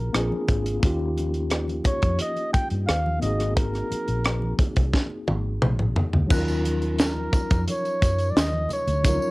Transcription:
Already playing: tine electric piano A#3 C#4 F4 F#4 G#4, flugelhorn A#4
0.13 fingered electric bass A#1, tine electric piano A#3 C4 D4 F4 G#4, cross-stick, closed hi-hat, muted conga
0.31 muted fingered electric bass stroke, muted conga, high conga
0.48 fingered electric bass G#1, kick, closed hi-hat, low conga
0.66 closed hi-hat
0.80 fingered electric bass D#2, tine electric piano A#3 C#4 D#4, kick, closed hi-hat
0.85 tine electric piano F4 G4
0.99 muted conga
1.17 closed hi-hat, high conga
1.34 closed hi-hat
1.50 cross-stick, closed hi-hat, muted conga
1.68 closed hi-hat, high conga
1.84 flugelhorn C#5, muted fingered electric bass stroke, kick, closed hi-hat, high conga, low conga
2.02 fingered electric bass F2, kick, closed hi-hat
2.19 flugelhorn D#5, closed hi-hat, high conga
2.36 closed hi-hat, muted conga
2.53 flugelhorn G5, muted fingered electric bass stroke, kick, closed hi-hat, high conga
2.70 fingered electric bass G2, closed hi-hat
2.87 fingered electric bass D#2, flugelhorn F5, cross-stick, closed hi-hat
3.06 muted conga, high conga
3.19 fingered electric bass G#1, tine electric piano A#3 C4 D#4, flugelhorn D#5, closed hi-hat, low conga
3.24 tine electric piano F#4 G#4
3.40 cross-stick, closed hi-hat
3.56 flugelhorn A#4, kick, closed hi-hat
3.74 cross-stick, closed hi-hat, muted conga
3.91 muted fingered electric bass stroke, closed hi-hat, high conga
4.08 fingered electric bass A#1, closed hi-hat
4.25 cross-stick, closed hi-hat, muted conga
4.42 muted conga, high conga
4.59 muted fingered electric bass stroke, kick, closed hi-hat, high conga, low conga
4.76 fingered electric bass C2, kick, closed hi-hat
4.94 kick, snare, high conga
5.10 muted conga
5.27 fingered electric bass G#1, high tom, high conga
5.62 fingered electric bass A#1, mid tom, muted conga
5.79 mid tom, high conga
5.96 floor tom, low conga
6.13 fingered electric bass D2, floor tom
6.27 fingered electric bass D#2, tine electric piano F#3 C#4 D#4, kick, crash, tambourine
6.31 tine electric piano F4 A#4, celesta F#6
6.48 closed hi-hat, tambourine, muted conga
6.65 closed hi-hat, high conga
6.82 closed hi-hat
6.99 flugelhorn A#4, snare, closed hi-hat, tambourine, muted conga
7.16 muted conga, high conga
7.33 muted fingered electric bass stroke, kick, closed hi-hat, tambourine, high conga, low conga
7.50 fingered electric bass F2, kick, closed hi-hat, tambourine
7.68 flugelhorn C#5, closed hi-hat, tambourine, high conga
7.85 closed hi-hat, tambourine
8.01 fingered electric bass F#2, kick, closed hi-hat, tambourine, high conga
8.18 closed hi-hat, tambourine
8.30 flugelhorn D5
8.36 fingered electric bass D#2, flugelhorn D#5, snare, closed hi-hat, tambourine, muted conga
8.53 muted conga, high conga
8.69 closed hi-hat, tambourine, low conga
8.73 flugelhorn C#5
8.87 fingered electric bass D2, closed hi-hat, tambourine, low conga
9.02 tine electric piano F3 C#4 D#4, kick, closed hi-hat, tambourine
9.07 tine electric piano F#3 F4 A#4
9.22 tambourine

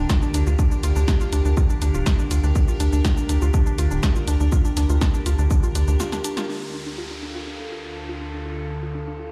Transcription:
Already playing: ambient pad D3 D4 G4 A#4
0.10 synth pluck F4, kick, snare, shaker
0.22 synth pluck D4, shaker
0.34 analog synth bass D2, synth pluck D4, closed hi-hat, shaker
0.47 analog synth bass D2, synth pluck F4, shaker
0.59 synth pluck D4, kick, shaker
0.71 synth pluck D4, shaker
0.83 analog synth bass D2, synth pluck F4, closed hi-hat, shaker
0.96 analog synth bass D2, synth pluck D4, shaker
1.08 synth pluck D4, kick, snare, shaker
1.21 synth pluck F4, shaker
1.33 analog synth bass D2, synth pluck D4, closed hi-hat, shaker
1.45 analog synth bass D2, synth pluck D4, shaker
1.57 synth pluck F4, kick, shaker
1.70 synth pluck D4, shaker
1.82 analog synth bass D2, synth pluck D4, closed hi-hat, shaker
1.94 analog synth bass D1, synth pluck F4, shaker
2.06 synth pluck D4, kick, snare, shaker
2.19 synth pluck D4, shaker
2.31 analog synth bass D2, synth pluck F4, closed hi-hat, shaker
2.44 analog synth bass D2, synth pluck D4, shaker
2.55 synth pluck D4, kick, shaker
2.68 synth pluck F4, shaker
2.80 analog synth bass D2, synth pluck D4, closed hi-hat, shaker
2.93 analog synth bass D2, synth pluck D4, shaker
3.05 synth pluck F4, kick, snare, shaker
3.17 synth pluck D4, shaker
3.29 analog synth bass D2, synth pluck D4, closed hi-hat, shaker
3.42 analog synth bass D2, synth pluck F4, shaker
3.54 synth pluck D4, kick, shaker
3.66 synth pluck D4, shaker
3.78 analog synth bass D2, synth pluck F4, closed hi-hat, shaker
3.91 analog synth bass D1, synth pluck D4, shaker
4.03 synth pluck D4, kick, snare, shaker
4.16 synth pluck F4, shaker
4.28 analog synth bass D2, synth pluck D4, closed hi-hat, shaker
4.40 analog synth bass D2, synth pluck D4, shaker
4.52 synth pluck F4, kick, shaker
4.65 synth pluck D4, shaker
4.77 analog synth bass D2, synth pluck D4, snare, closed hi-hat, shaker
4.89 analog synth bass D2, synth pluck F4, shaker
5.01 synth pluck D4, kick, snare, shaker
5.14 synth pluck D4, shaker
5.26 analog synth bass D2, synth pluck F4, closed hi-hat, shaker
5.39 analog synth bass D2, synth pluck D4, shaker
5.51 synth pluck D4, kick, shaker
5.63 synth pluck F4, shaker
5.75 analog synth bass D2, synth pluck D4, closed hi-hat, shaker
5.88 analog synth bass D2, synth pluck D4, shaker
6.00 synth pluck F4, snare, shaker
6.12 synth pluck D4, snare, shaker
6.24 synth pluck D4, closed hi-hat, shaker
6.37 synth pluck F4, snare, shaker
6.49 ambient pad D2 D3 F4 A4, synth pluck D4, downlifter
6.62 synth pluck F4
6.74 synth pluck D4
6.86 synth pluck D4
6.98 synth pluck F4
7.11 synth pluck D4
7.23 synth pluck D4
7.35 synth pluck F4
7.47 synth pluck D4
7.60 synth pluck D4
7.72 synth pluck F4
7.85 synth pluck D4
7.97 synth pluck D4
8.09 synth pluck F4
8.21 synth pluck D4
8.34 synth pluck D4
8.46 synth pluck F4
8.58 synth pluck D4
8.70 synth pluck D4
8.83 synth pluck F4
8.95 synth pluck D4
9.08 synth pluck D4
9.19 synth pluck F4

